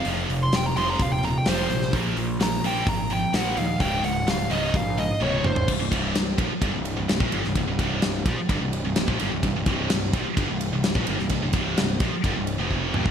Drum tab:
CC |----------------|----------------|----------------|x---------------|
RD |----------------|----------------|----------------|--x-x-x-x-x-x-x-|
HH |o-o-o-o-o-o-o-o-|o-o-o-o-o-o-o-o-|o-o-o-o-o-o-----|----------------|
SD |----o-------o--o|----o-------o---|----o-----------|----o-------o--o|
T1 |----------------|----------------|------------o---|----------------|
T2 |----------------|----------------|--------------o-|----------------|
FT |----------------|----------------|---------------o|----------------|
BD |--------o-------|o-------o-------|o-------o-------|o-o---o-o----o--|

CC |----------------|----------------|----------------|
RD |x-x-x-x-x-x-x-x-|x-x-x-x-x-x-x-x-|x-x-x-x-x-x-----|
HH |----------------|----------------|----------------|
SD |----o-------o---|----o-------o--o|----o-----------|
T1 |----------------|----------------|----------------|
T2 |----------------|----------------|--------------o-|
FT |----------------|----------------|----------------|
BD |o-o---o-o----o--|o-o---o-o----o--|o-o---o-o---o--o|